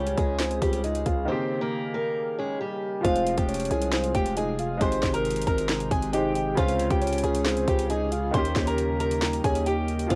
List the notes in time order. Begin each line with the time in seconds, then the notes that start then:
Already playing: C#2 C#3 G3 C#4 F4 G4 C#5
0.07 closed hi-hat
0.18 C#2 G#3 G#4, kick, closed hi-hat
0.40 C5, snare, clap, closed hi-hat
0.51 closed hi-hat
0.62 C#2 G3 G4, kick, closed hi-hat
0.73 closed hi-hat
0.84 G#3 G#4 D#5, closed hi-hat
0.95 closed hi-hat
1.06 C#2 F5, kick, closed hi-hat
1.25 D#3 A#3 C4 C5
1.30 C#3 G4
1.61 A#3 A#4
1.94 A#3 A#4
2.38 G#3 G#4 C#5
2.61 G3 G4
3.01 F1 C3 F3 G#3 F4 C5 F5, kick, closed hi-hat
3.05 G#3 F4
3.16 closed hi-hat
3.27 closed hi-hat
3.37 F1 G4 G5, kick, closed hi-hat
3.49 C#5, closed hi-hat
3.54 closed hi-hat
3.60 closed hi-hat
3.65 closed hi-hat
3.71 C2 G#4 G#5, closed hi-hat
3.82 closed hi-hat
3.93 C5, snare, clap, closed hi-hat
4.04 closed hi-hat
4.15 F1 G4 G5, kick, closed hi-hat
4.26 closed hi-hat
4.37 G#4 D#5 G#5, closed hi-hat
4.59 F5, closed hi-hat
4.77 G#1 C3 G#3 D#4 G4 C6, kick, closed hi-hat
4.81 G4 C5
4.92 closed hi-hat
5.03 G#1, kick, snare, clap, closed hi-hat
5.14 A#4 A#5, closed hi-hat
5.25 closed hi-hat
5.31 closed hi-hat
5.36 closed hi-hat
5.42 closed hi-hat
5.47 G#1 A#4 A#5, kick, closed hi-hat
5.58 closed hi-hat
5.69 snare, clap, closed hi-hat
5.80 closed hi-hat
5.91 G#1 G#4 G#5, kick, closed hi-hat
6.02 closed hi-hat
6.13 G#3 D#4 G4 C5 D#5 G5, closed hi-hat
6.35 G5, closed hi-hat
6.55 C#2 C#3 C#4 F4 C5 F5, kick, closed hi-hat
6.59 F4
6.69 closed hi-hat
6.80 closed hi-hat
6.90 C#2 G4 G5, kick, closed hi-hat
7.01 C#5, closed hi-hat
7.07 closed hi-hat
7.13 closed hi-hat
7.18 closed hi-hat
7.24 C#2 G#4 G#5, closed hi-hat
7.35 closed hi-hat
7.46 C5, snare, clap, closed hi-hat
7.57 closed hi-hat
7.68 C#2 G4 G5, kick, closed hi-hat
7.79 closed hi-hat
7.90 G#4 D#5 G#5, closed hi-hat
8.12 F5, closed hi-hat
8.31 D#2 D#3 G3 A#3 D#4 C5 C6, kick, closed hi-hat
8.35 C#4 G4
8.45 closed hi-hat
8.56 D#2, kick, snare, clap, closed hi-hat
8.67 A#4 A#5, closed hi-hat
8.78 closed hi-hat
9.00 A#4 A#5, closed hi-hat
9.11 closed hi-hat
9.22 snare, clap, closed hi-hat
9.33 closed hi-hat
9.44 D#2 G#4 C#5 G#5, kick, closed hi-hat
9.55 closed hi-hat
9.66 G4 G5, closed hi-hat
9.88 closed hi-hat
9.99 closed hi-hat
10.07 F1 C3 F3 G#3 F4 C5 F5, kick, closed hi-hat
10.11 G#3 F4